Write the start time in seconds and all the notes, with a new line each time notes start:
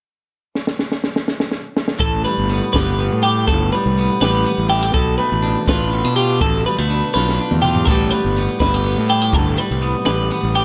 0.55 snare
0.67 snare
0.79 snare
0.92 snare
1.04 snare
1.16 snare
1.28 snare
1.40 snare
1.51 snare
1.77 snare
1.88 snare
1.98 A1 A2 A4, kick, closed hi-hat
2.25 G3 B4, closed hi-hat
2.38 G1
2.49 B3, closed hi-hat
2.73 G1 G4 B4, kick, snare, closed hi-hat
2.99 B3, closed hi-hat
3.13 A2
3.23 G4, closed hi-hat
3.48 G1 A2 A4, kick, closed hi-hat
3.72 G3 B4, closed hi-hat
3.86 C2
3.97 B3, closed hi-hat
4.21 A1 G4 B4, snare, closed hi-hat
4.45 B3, closed hi-hat
4.58 A1
4.69 E4 G4, closed hi-hat
4.83 G4
4.94 B1 B2 A4, kick, closed hi-hat
5.18 A3 B4, closed hi-hat
5.32 A1
5.43 D4, closed hi-hat
5.68 A1 F4 B4, kick, snare, closed hi-hat
5.92 B3, closed hi-hat
6.05 B2 D4
6.16 F4 G4, closed hi-hat
6.41 A1 B2 A4, kick, closed hi-hat
6.66 G3 B4, closed hi-hat
6.78 D2 A3
6.90 D4, closed hi-hat
7.14 B1 F4 B4, snare
7.29 snare
7.40 D4
7.51 E2, mid tom
7.62 F4 G4, mid tom
7.75 floor tom
7.85 A1 A2 E3 G3 A4, kick, closed hi-hat
7.90 B3 G4
8.11 G3 B4, closed hi-hat
8.25 G1
8.36 B3, closed hi-hat
8.60 G1 E4 B4, kick, snare, closed hi-hat
8.74 G4
8.84 B3, closed hi-hat
8.98 A2
9.08 E4 G4, closed hi-hat
9.22 G4
9.33 G1 A2 A4, kick, closed hi-hat
9.57 G3 B4, closed hi-hat
9.71 C2
9.82 B3, closed hi-hat
10.05 A1 G4 B4, snare, closed hi-hat
10.30 B3, closed hi-hat
10.43 A1
10.55 G4, closed hi-hat